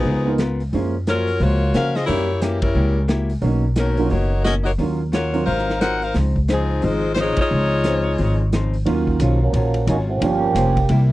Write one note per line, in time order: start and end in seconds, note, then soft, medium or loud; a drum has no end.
0.00 0.36 F3 medium
0.00 0.35 B3 medium
0.00 0.36 D#4 medium
0.00 0.35 G#4 medium
0.05 0.69 C#2 medium
0.05 0.27 C#3 soft
0.05 0.28 B3 soft
0.05 0.28 F4 medium
0.05 0.28 A#4 medium
0.25 0.37 A#3 medium
0.25 0.38 B3 medium
0.25 0.38 D#4 medium
0.25 0.39 F4 medium
0.38 0.61 C#3 medium
0.38 0.61 B3 medium
0.38 0.62 F4 medium
0.38 0.62 A#4 medium
0.38 snare medium
0.38 closed hi-hat soft
0.60 open hi-hat soft
0.73 1.37 F#2 medium
0.73 0.95 F#2 soft
0.73 0.96 F3 soft
0.73 0.92 G#3 soft
0.73 0.92 A#3 soft
0.73 0.96 A#3 soft
0.73 0.92 C#4 soft
0.73 0.97 C#4 soft
0.73 0.93 F4 medium
0.73 open hi-hat soft
1.07 1.29 F#2 medium
1.07 1.29 F3 soft
1.07 1.39 F#3 medium
1.07 1.30 A#3 medium
1.07 1.39 C#4 medium
1.07 1.30 C#4 medium
1.07 1.39 F4 medium
1.07 1.39 A#4 medium
1.07 snare medium
1.07 closed hi-hat medium
1.27 open hi-hat soft
1.40 1.72 C#2 medium
1.40 1.63 F#2 soft
1.40 1.63 F3 soft
1.40 1.75 A#3 medium
1.40 1.63 A#3 soft
1.40 1.64 C#4 soft
1.40 1.74 F4 medium
1.40 1.73 F#4 medium
1.40 1.75 C#5 medium
1.40 open hi-hat soft
1.74 1.96 F#2 medium
1.74 2.06 C#3 medium
1.74 1.96 F3 medium
1.74 1.97 A#3 medium
1.74 1.94 C#4 medium
1.74 1.97 C#4 medium
1.74 1.94 F#4 medium
1.74 1.94 A#4 medium
1.74 1.94 F5 loud
1.74 snare medium
1.74 closed hi-hat soft
1.95 2.08 C4 medium
1.95 2.08 F4 medium
1.95 2.08 G#4 medium
1.95 2.08 D#5 medium
1.95 snare soft
1.95 open hi-hat soft
2.05 2.72 F#2 medium
2.05 2.30 F#3 soft
2.05 2.27 G3 soft
2.05 2.38 A#3 medium
2.05 2.38 E4 medium
2.05 2.38 G4 medium
2.05 2.39 C#5 medium
2.05 open hi-hat soft
2.09 2.31 A#3 soft
2.09 2.28 A#3 soft
2.09 2.28 C#4 soft
2.09 2.31 E4 soft
2.09 2.28 E4 medium
2.09 2.31 G4 soft
2.41 2.62 E3 medium
2.41 2.64 F#3 soft
2.41 2.62 A#3 medium
2.41 2.64 A#3 medium
2.41 2.60 C#4 medium
2.41 2.64 E4 medium
2.41 2.62 G4 medium
2.41 2.65 G4 medium
2.41 snare medium
2.41 closed hi-hat soft
2.61 3.05 G3 medium
2.61 3.06 C#4 medium
2.61 3.05 E4 medium
2.61 3.06 A#4 medium
2.61 kick medium
2.61 ride medium
2.75 3.40 C#2 medium
2.75 2.98 F#3 soft
2.75 2.98 A#3 soft
2.75 2.98 E4 soft
2.75 2.99 G4 soft
3.08 3.31 F#3 medium
3.08 3.31 A#3 medium
3.08 3.31 E4 medium
3.08 3.32 G4 medium
3.08 snare medium
3.08 closed hi-hat soft
3.30 open hi-hat soft
3.42 4.07 B1 medium
3.42 3.66 B2 soft
3.42 3.66 D#3 soft
3.42 3.62 F#3 medium
3.42 3.62 A#3 soft
3.42 3.66 A#3 soft
3.42 3.62 C#4 soft
3.42 3.67 C#4 soft
3.42 3.63 D#4 medium
3.42 open hi-hat soft
3.76 3.99 B2 medium
3.76 3.99 D#3 medium
3.76 4.09 F#3 medium
3.76 4.00 A#3 medium
3.76 4.00 C#4 medium
3.76 4.09 C#4 medium
3.76 4.08 D#4 medium
3.76 4.09 A#4 medium
3.76 snare medium
3.76 closed hi-hat soft
3.97 4.10 F#3 medium
3.97 4.10 A#3 medium
3.97 4.11 C#4 medium
3.97 4.10 F4 medium
3.97 open hi-hat soft
4.09 4.76 F#1 medium
4.09 4.33 B2 soft
4.09 4.34 D#3 soft
4.09 4.45 A#3 medium
4.09 4.34 A#3 soft
4.09 4.34 C#4 soft
4.09 4.44 D#4 medium
4.09 4.43 F#4 medium
4.09 4.45 C#5 medium
4.09 open hi-hat soft
4.44 4.67 B2 medium
4.44 4.67 D#3 medium
4.44 4.68 A#3 medium
4.44 4.55 C#4 medium
4.44 4.68 C#4 medium
4.44 4.54 F#4 medium
4.44 4.54 A#4 medium
4.44 4.54 D#5 medium
4.44 snare medium
4.44 closed hi-hat soft
4.63 4.71 A#3 medium
4.63 4.70 D#4 medium
4.63 4.71 F#4 medium
4.63 4.71 C#5 medium
4.63 open hi-hat soft
4.78 5.43 D#2 medium
4.78 5.01 D#3 soft
4.78 5.01 F#3 soft
4.78 4.98 F#3 medium
4.78 4.99 A#3 soft
4.78 5.01 C#4 soft
4.78 4.99 C#4 soft
4.78 5.02 F4 soft
4.78 4.99 F4 medium
4.78 open hi-hat soft
5.12 5.35 D#3 soft
5.12 5.35 F#3 medium
5.12 5.44 A#3 medium
5.12 5.35 C#4 medium
5.12 5.35 F4 medium
5.12 5.45 F4 medium
5.12 5.45 F#4 medium
5.12 5.44 C#5 medium
5.12 snare medium
5.12 closed hi-hat soft
5.34 5.45 F#3 medium
5.34 5.46 A#3 soft
5.34 5.46 C4 soft
5.34 5.46 F4 medium
5.34 open hi-hat soft
5.45 6.11 G#1 medium
5.45 5.69 G#2 medium
5.45 5.69 F#3 medium
5.45 5.70 C4 soft
5.45 5.77 D#4 medium
5.45 5.70 F4 medium
5.45 5.77 A#4 medium
5.45 5.78 C5 medium
5.45 5.78 F5 medium
5.45 open hi-hat soft
5.58 snare soft
5.70 snare soft
5.80 6.03 G#2 medium
5.80 6.04 F#3 medium
5.80 6.04 C4 medium
5.80 6.00 D#4 medium
5.80 6.04 F4 medium
5.80 6.00 A#4 medium
5.80 6.00 C5 medium
5.80 6.00 F#5 loud
5.80 snare medium
5.80 closed hi-hat soft
6.02 6.15 D#4 medium
6.02 6.15 A#4 medium
6.02 6.15 C5 medium
6.02 6.15 F5 medium
6.02 open hi-hat soft
6.14 6.79 C#2 medium
6.14 6.37 C#3 soft
6.14 6.37 F3 soft
6.14 6.37 C4 soft
6.14 6.38 D#4 soft
6.14 snare soft
6.14 open hi-hat soft
6.36 kick soft
6.48 6.71 C#3 medium
6.48 6.71 F3 medium
6.48 6.82 F3 medium
6.48 6.71 C4 medium
6.48 6.82 C4 medium
6.48 6.72 D#4 medium
6.48 6.82 D#4 medium
6.48 6.82 G#4 medium
6.48 snare medium
6.48 closed hi-hat soft
6.81 7.34 G#1 medium
6.81 7.04 C#3 soft
6.81 7.05 F3 soft
6.81 7.14 G#3 medium
6.81 7.05 C4 medium
6.81 7.05 D#4 medium
6.81 7.14 D#4 medium
6.81 7.14 F4 medium
6.81 7.13 C5 medium
6.81 open hi-hat soft
7.14 7.39 C#3 medium
7.14 7.39 F3 medium
7.14 7.40 C4 medium
7.14 7.17 C5 medium
7.14 snare medium
7.14 closed hi-hat soft
7.18 7.40 G#3 medium
7.18 7.40 D#4 medium
7.18 7.39 D#4 medium
7.18 7.39 F4 medium
7.18 7.39 C#5 medium
7.37 8.49 F4 medium
7.37 muted upright bass stroke soft
7.37 kick medium
7.37 ride medium
7.41 8.50 G#3 medium
7.41 8.50 D#4 medium
7.41 8.50 C#5 loud
7.50 8.15 C#2 medium
7.50 7.73 C#3 soft
7.50 7.73 F3 soft
7.50 7.73 C4 soft
7.50 7.74 D#4 soft
7.84 8.07 C#3 medium
7.84 8.07 F3 medium
7.84 8.07 C4 medium
7.84 8.07 D#4 medium
7.84 snare medium
7.84 closed hi-hat soft
8.18 8.83 G#1 medium
8.18 8.41 C#3 soft
8.18 8.41 F3 soft
8.18 8.41 C4 soft
8.18 8.42 D#4 soft
8.18 open hi-hat soft
8.52 8.75 C#3 medium
8.52 8.75 F3 medium
8.52 8.76 C4 medium
8.52 8.76 D#4 medium
8.52 snare medium
8.52 closed hi-hat medium
8.73 open hi-hat soft
8.85 9.19 D#2 medium
8.85 9.36 D#3 medium
8.85 9.09 D#3 soft
8.85 9.36 F#3 medium
8.85 9.09 F#3 soft
8.85 9.37 A#3 medium
8.85 9.37 C#4 medium
8.85 9.10 C#4 medium
8.85 9.37 F4 medium
8.85 ride medium
8.89 9.10 F4 medium
9.07 kick soft
9.20 9.52 B1 medium
9.20 9.40 C#3 medium
9.20 9.43 D#3 medium
9.20 9.41 F3 medium
9.20 9.43 F#3 medium
9.20 9.41 F#3 medium
9.20 9.41 A#3 medium
9.20 9.43 C#4 medium
9.20 9.43 F4 medium
9.20 hi-hat pedal medium
9.20 ride medium
9.42 9.54 F3 medium
9.42 9.53 F#3 medium
9.42 9.54 A#3 medium
9.42 9.54 C#4 medium
9.53 9.86 A#1 medium
9.53 9.76 D#3 soft
9.53 9.86 F3 medium
9.53 9.86 F#3 medium
9.53 9.77 F#3 medium
9.53 9.86 A#3 medium
9.53 9.86 C#4 medium
9.53 9.77 C#4 medium
9.53 9.77 F4 medium
9.53 ride medium
9.74 ride soft
9.87 10.20 G#1 loud
9.87 10.10 D#3 medium
9.87 10.10 F#3 medium
9.87 9.98 F#3 medium
9.87 9.98 A#3 medium
9.87 9.97 C#4 medium
9.87 10.10 C#4 medium
9.87 9.97 D#4 medium
9.87 10.10 F4 medium
9.87 hi-hat pedal medium
9.87 ride medium
10.09 10.86 F3 medium
10.09 11.06 A#3 medium
10.09 10.86 C#4 medium
10.09 11.07 G4 medium
10.20 10.54 G1 medium
10.20 10.43 G2 soft
10.20 10.44 F3 soft
10.20 10.73 F3 medium
10.20 10.73 G3 soft
10.20 10.44 A#3 soft
10.20 10.73 A#3 soft
10.20 10.44 C#4 soft
10.20 ride medium
10.24 10.73 C#4 soft
10.24 10.73 F4 medium
10.55 10.88 F1 medium
10.55 10.78 G2 medium
10.55 10.78 F3 medium
10.55 10.78 A#3 medium
10.55 10.78 C#4 medium
10.55 hi-hat pedal medium
10.55 ride medium
10.77 kick medium
10.77 ride soft
10.89 11.12 C2 medium
10.89 11.11 C3 medium
10.89 11.12 G3 medium
10.89 11.12 A#3 medium
10.89 11.12 E4 medium
10.89 ride medium